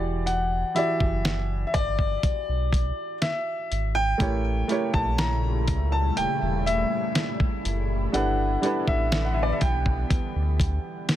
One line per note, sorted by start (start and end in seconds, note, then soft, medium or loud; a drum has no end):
0.00 0.64 E1 loud
0.00 0.55 E3 medium
0.00 0.56 E4 medium
0.00 0.56 F#4 medium
0.00 0.57 G4 medium
0.00 0.31 D5 medium
0.00 0.57 D5 medium
0.26 0.77 F#5 loud
0.26 closed hi-hat medium
0.74 1.96 E3 medium
0.74 1.96 E4 medium
0.74 1.96 F#4 medium
0.74 1.97 G4 medium
0.74 1.97 D5 medium
0.74 1.63 E5 loud
0.74 closed hi-hat medium
1.00 1.65 F#1 loud
1.00 kick medium
1.25 snare loud
1.25 closed hi-hat medium
1.67 1.74 E5 medium
1.74 2.18 G1 loud
1.74 3.18 D5 loud
1.74 kick medium
1.74 closed hi-hat medium
1.99 kick medium
2.23 2.33 B1 medium
2.23 kick loud
2.23 closed hi-hat medium
2.48 2.92 B1 medium
2.73 kick loud
2.73 closed hi-hat medium
3.22 3.92 E5 medium
3.22 snare loud
3.22 closed hi-hat medium
3.71 4.14 G#1 medium
3.71 closed hi-hat medium
3.95 4.90 G5 loud
4.18 4.64 A1 loud
4.18 8.10 A#2 medium
4.18 8.10 C#3 medium
4.18 11.16 G3 medium
4.18 4.49 A3 medium
4.18 8.10 A3 medium
4.18 4.50 E4 medium
4.18 11.16 E4 loud
4.18 4.50 G4 medium
4.18 4.51 A#4 medium
4.18 4.51 C#5 medium
4.18 kick loud
4.18 closed hi-hat medium
4.68 5.89 A3 medium
4.68 5.89 E4 medium
4.68 5.90 G4 medium
4.68 5.90 A#4 medium
4.68 5.91 C#5 medium
4.68 closed hi-hat medium
4.94 5.70 A#1 medium
4.94 5.19 A5 loud
4.94 kick medium
5.18 5.94 A#5 loud
5.18 snare loud
5.18 closed hi-hat medium
5.68 6.11 C#2 loud
5.68 kick medium
5.68 closed hi-hat medium
5.92 6.18 A5 loud
6.17 6.27 E1 soft
6.17 6.68 G5 loud
6.17 closed hi-hat medium
6.42 6.85 E1 medium
6.66 8.10 E5 loud
6.66 closed hi-hat medium
7.15 snare loud
7.15 closed hi-hat medium
7.40 kick medium
7.65 8.08 F#1 loud
7.65 closed hi-hat medium
8.12 8.57 G1 loud
8.12 11.16 D3 medium
8.12 11.16 E3 medium
8.12 8.43 G3 medium
8.12 11.16 B3 medium
8.12 8.43 D4 medium
8.12 8.44 E4 medium
8.12 8.44 A4 medium
8.12 8.45 B4 medium
8.12 8.90 F#5 loud
8.12 closed hi-hat medium
8.62 9.83 G3 medium
8.62 9.83 D4 medium
8.62 9.83 E4 medium
8.62 9.84 A4 medium
8.62 9.84 B4 medium
8.62 closed hi-hat medium
8.88 9.53 A1 medium
8.88 9.26 E5 medium
8.88 kick loud
9.12 snare loud
9.12 closed hi-hat medium
9.25 9.34 F#5 medium
9.34 9.43 E5 medium
9.43 9.52 D5 medium
9.52 9.61 E5 medium
9.61 10.05 B1 medium
9.61 11.16 G5 medium
9.61 kick medium
9.61 closed hi-hat medium
9.86 kick medium
10.10 10.20 D2 medium
10.10 kick loud
10.10 closed hi-hat medium
10.35 10.78 D2 medium
10.60 kick loud
10.60 closed hi-hat medium
11.09 snare loud
11.09 closed hi-hat medium